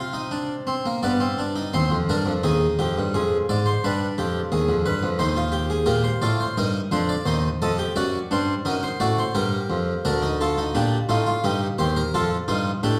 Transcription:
0.00 0.98 C3 medium
0.00 0.13 F4 medium
0.00 0.98 C5 medium
0.13 0.30 D#4 medium
0.31 0.53 D4 medium
0.67 0.84 C4 medium
0.86 1.02 A#3 medium
1.03 1.71 G2 medium
1.03 1.20 B3 medium
1.03 1.71 D5 medium
1.20 1.37 C4 soft
1.38 1.55 D4 medium
1.56 1.73 D#4 medium
1.73 1.91 D#2 medium
1.73 1.95 C4 medium
1.73 1.95 C5 medium
1.90 2.08 F2 medium
2.09 2.26 G2 medium
2.09 2.31 D4 medium
2.09 2.31 A#4 medium
2.26 2.43 F2 medium
2.43 2.65 D#2 medium
2.43 3.78 D#4 medium
2.43 2.65 G#4 medium
2.79 2.96 F2 medium
2.79 3.00 G4 medium
2.98 3.14 G2 medium
3.14 3.36 F2 medium
3.14 3.36 G#4 medium
3.49 3.70 G#2 medium
3.49 3.65 D5 medium
3.66 3.82 C5 medium
3.84 4.05 G2 medium
3.84 5.17 D4 medium
3.84 4.05 B4 medium
4.18 4.39 F2 medium
4.18 4.39 G4 medium
4.52 4.68 D#2 medium
4.52 4.73 G#4 medium
4.69 4.85 F2 medium
4.86 5.02 G2 medium
4.86 5.07 B4 medium
5.03 5.19 F2 medium
5.19 5.86 D#2 medium
5.19 5.36 D#4 medium
5.19 5.86 C5 medium
5.36 5.53 F4 medium
5.52 5.69 G4 medium
5.70 5.87 G#4 medium
5.86 6.08 A#2 medium
5.86 6.08 G4 medium
5.86 6.04 A#4 medium
6.04 6.21 C5 medium
6.22 6.43 A2 medium
6.22 6.44 F4 medium
6.22 6.39 D5 medium
6.40 6.57 C5 medium
6.57 6.79 G2 medium
6.57 6.79 D#4 medium
6.57 6.79 A#4 medium
6.91 7.13 F2 medium
6.91 7.13 D4 medium
6.91 7.08 C5 medium
7.09 7.26 D5 medium
7.26 7.47 D#2 medium
7.26 7.48 D#4 medium
7.26 7.47 C5 medium
7.62 7.83 F2 medium
7.62 7.78 A4 medium
7.62 7.83 D#5 medium
7.78 7.95 G4 medium
7.96 8.18 F#2 medium
7.96 8.18 F#4 medium
7.96 8.17 D5 medium
8.31 8.53 G2 medium
8.31 8.52 D4 medium
8.31 8.53 C5 medium
8.65 8.87 F#2 medium
8.65 8.87 D#4 medium
8.65 8.82 A#4 medium
8.83 9.00 C5 medium
9.00 9.22 A2 medium
9.00 9.22 F#4 medium
9.00 9.17 D5 medium
9.18 9.35 C5 medium
9.35 9.57 G2 medium
9.35 10.03 G4 medium
9.35 10.03 A#4 medium
9.70 9.92 F2 medium
10.05 10.73 D2 medium
10.05 10.22 D4 medium
10.05 10.27 A#4 medium
10.22 10.39 D#4 medium
10.41 10.57 F4 medium
10.41 10.62 A4 medium
10.58 10.75 D#4 medium
10.75 10.96 A#2 medium
10.75 10.96 D4 medium
10.75 10.96 G4 medium
11.09 11.31 A2 medium
11.09 11.26 D#4 medium
11.09 11.25 F4 medium
11.26 11.43 F4 medium
11.44 11.66 G2 medium
11.44 11.66 D#4 medium
11.44 11.65 G4 medium
11.78 12.00 D#2 medium
11.78 12.00 G4 medium
11.78 11.95 C5 medium
11.96 12.13 A#4 medium
12.14 12.35 F2 medium
12.14 12.35 F4 medium
12.14 12.35 A4 medium
12.48 12.70 G2 medium
12.48 12.69 D#4 medium
12.48 12.69 F4 medium
12.83 12.99 A2 medium
12.83 12.99 D4 medium
12.83 12.99 G4 medium

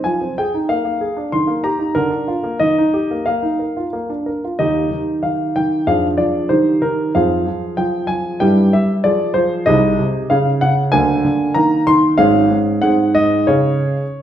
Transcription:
0.04 0.21 F3 soft
0.04 0.33 G#5 medium
0.21 0.38 C4 soft
0.38 0.54 G#4 soft
0.38 0.57 G5 medium
0.54 0.69 D#4 soft
0.69 0.83 A#3 soft
0.69 1.28 F5 medium
0.85 1.01 A#3 soft
1.01 1.17 G#4 soft
1.17 1.32 D4 soft
1.32 1.47 D#3 soft
1.32 1.51 C6 medium
1.47 1.64 A#3 soft
1.64 1.80 G4 soft
1.64 1.95 A#5 medium
1.79 1.95 D#4 soft
1.95 2.11 D3 medium
1.95 2.57 A#4 medium
2.10 2.28 D4 soft
2.28 2.45 F4 soft
2.43 2.61 A#3 soft
2.60 2.77 D#3 soft
2.60 3.26 D#5 medium
2.78 2.95 D#4 soft
2.94 3.11 G4 soft
3.11 3.25 A#3 soft
3.26 3.43 A#3 soft
3.26 3.86 F5 medium
3.43 3.61 D#4 soft
3.59 3.77 A#4 soft
3.77 3.93 F4 soft
3.93 4.09 A#3 soft
4.09 4.27 D4 soft
4.26 4.44 A#4 soft
4.44 4.60 F4 soft
4.59 4.91 D#2 soft
4.59 4.89 D#3 soft
4.59 5.83 D#4 soft
4.59 5.83 G4 soft
4.59 4.98 D#5 medium
4.91 5.21 D#3 soft
5.23 5.54 D#3 soft
5.23 5.55 F5 soft
5.56 5.87 D#3 soft
5.56 5.84 G5 medium
5.87 6.18 F2 soft
5.87 6.17 F3 soft
5.87 6.47 D4 soft
5.87 6.47 G#4 soft
5.87 6.06 F5 medium
6.18 6.49 F3 soft
6.18 6.50 D5 medium
6.49 6.81 D#3 soft
6.49 7.11 D#4 soft
6.49 7.11 G4 soft
6.49 6.82 C5 medium
6.82 7.14 D#3 soft
6.82 7.12 A#4 medium
7.15 7.46 F2 soft
7.15 7.45 F3 soft
7.15 8.38 C4 soft
7.15 8.38 G#4 soft
7.15 7.74 F5 medium
7.47 7.76 F3 soft
7.77 8.07 F3 soft
7.77 8.10 G5 medium
8.07 8.40 F3 soft
8.07 8.40 G#5 medium
8.40 8.72 G2 soft
8.40 8.72 G3 soft
8.40 9.00 E4 soft
8.40 9.00 G4 soft
8.40 8.73 G5 medium
8.73 9.04 G3 soft
8.73 8.92 E5 medium
9.04 9.33 F3 soft
9.04 9.64 F4 soft
9.04 9.64 G#4 soft
9.04 9.33 D5 medium
9.34 9.66 F3 soft
9.34 9.66 C5 medium
9.66 9.98 C2 soft
9.66 9.97 C3 medium
9.66 10.26 D#4 soft
9.66 10.26 G#4 soft
9.66 10.04 D#5 medium
9.99 10.30 C3 soft
10.30 10.61 C#3 medium
10.30 10.89 C#4 soft
10.30 10.90 G#4 soft
10.30 10.49 F5 medium
10.61 10.93 C#3 medium
10.61 10.80 F#5 medium
10.92 11.24 D2 medium
10.92 11.23 D3 medium
10.92 11.52 A#3 soft
10.92 11.52 A#4 soft
10.92 11.56 G#5 medium
11.25 11.55 D3 soft
11.54 11.85 D#3 medium
11.54 12.15 A#3 soft
11.54 12.16 A#4 soft
11.54 11.84 A#5 medium
11.87 12.18 D#3 soft
11.87 12.06 C6 medium
12.18 12.50 G#1 medium
12.18 12.49 G#2 medium
12.18 12.80 C#4 soft
12.18 12.79 G#4 soft
12.18 12.57 F5 medium
12.51 12.81 G#2 soft
12.82 13.14 G#2 medium
12.82 13.45 C4 soft
12.82 13.45 G#4 soft
12.82 13.15 F#5 medium
13.15 13.48 G#2 soft
13.15 13.49 D#5 medium
13.47 13.95 C#3 medium
13.47 14.02 C#4 soft
13.47 14.02 G#4 soft
13.47 14.22 C#5 medium

